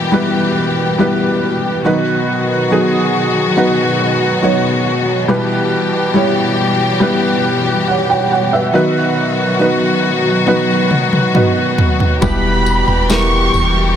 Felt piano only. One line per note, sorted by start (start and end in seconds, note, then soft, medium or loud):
0.00 1.88 B2 medium
0.00 0.12 G3 medium
0.00 0.12 B3 medium
0.00 0.13 E4 medium
0.00 0.13 G4 medium
0.00 1.88 A#4 medium
0.00 0.14 B4 loud
0.12 0.95 G3 medium
0.12 0.95 B3 medium
0.12 0.95 E4 medium
0.12 0.95 G4 medium
0.12 0.96 B4 loud
0.98 1.81 G3 medium
0.98 1.81 B3 medium
0.98 1.81 E4 medium
0.98 1.82 G4 medium
0.98 1.82 B4 medium
1.84 3.10 D#3 medium
1.84 2.67 F#3 medium
1.84 2.67 B3 medium
1.84 2.67 D#4 medium
1.84 2.67 F#4 medium
1.84 2.68 B4 loud
2.70 3.52 F#3 medium
2.70 3.53 B3 medium
2.70 3.53 D#4 medium
2.70 3.53 F#4 medium
2.70 3.53 G#4 loud
3.56 4.38 F#3 medium
3.56 4.39 B3 medium
3.56 4.39 D#4 medium
3.56 4.39 F#4 medium
3.56 4.39 B4 loud
4.42 5.24 F#3 medium
4.42 5.24 B3 medium
4.42 5.25 D#4 medium
4.42 5.25 F#4 medium
4.42 5.25 C#5 medium
5.28 6.54 B2 medium
5.28 6.10 G3 loud
5.28 6.10 B3 medium
5.28 6.10 E4 medium
5.28 6.10 G4 medium
5.28 6.11 B4 loud
6.14 6.96 G3 medium
6.14 6.96 B3 medium
6.14 6.96 E4 medium
6.14 6.97 G4 medium
6.14 6.97 C#5 loud
7.00 7.83 G3 loud
7.00 7.83 B3 medium
7.00 7.83 E4 medium
7.00 7.83 G4 medium
7.00 7.84 B4 loud
7.88 8.09 C#5 medium
7.88 8.08 F#5 medium
8.10 8.31 C#5 medium
8.10 8.30 G5 medium
8.32 8.52 C#5 medium
8.32 8.52 F#5 medium
8.53 8.74 B4 medium
8.53 8.94 E5 medium
8.73 10.00 D#3 medium
8.73 9.56 F#3 loud
8.73 9.56 B3 medium
8.73 9.56 D#4 medium
8.73 9.56 F#4 medium
8.73 9.56 B4 loud
9.59 10.42 F#3 medium
9.59 10.42 B3 medium
9.59 10.43 D#4 medium
9.59 10.43 F#4 medium
9.59 10.43 B4 medium
10.46 11.30 F#3 medium
10.46 11.30 B3 medium
10.46 11.30 D#4 medium
10.46 11.30 F#4 medium
10.46 11.31 B4 loud
11.34 12.18 F#3 medium
11.34 12.18 B3 medium
11.34 12.18 D#4 medium
11.34 12.18 F#4 medium
11.34 12.19 B4 medium
12.21 13.49 B2 medium
12.21 13.05 G3 medium
12.21 13.05 B3 medium
12.21 13.05 E4 medium
12.21 13.05 G4 medium
12.21 13.06 B4 loud
13.09 13.92 G3 medium
13.09 13.92 B3 medium
13.09 13.93 E4 medium
13.09 13.93 G4 medium
13.09 13.93 A#4 loud